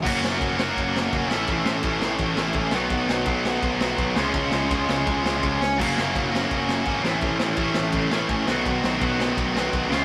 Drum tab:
CC |x-------|--------|--------|--------|
RD |--x-x-x-|x-x-x-x-|x-x-x-x-|x-x-x-x-|
SD |-o-o-o-o|-o-o-o-o|-o-o-o-o|-o-o-o-o|
BD |o-o-o-o-|o-o-o-o-|o-o-o-o-|o-o-o-o-|

CC |x-------|--------|--------|
RD |--x-x-x-|x-x-x-x-|x-x-x-x-|
SD |-o-o-o-o|-o-o-o-o|-o-o-o-o|
BD |o-o-o-o-|o-o-o-o-|o-o-o-o-|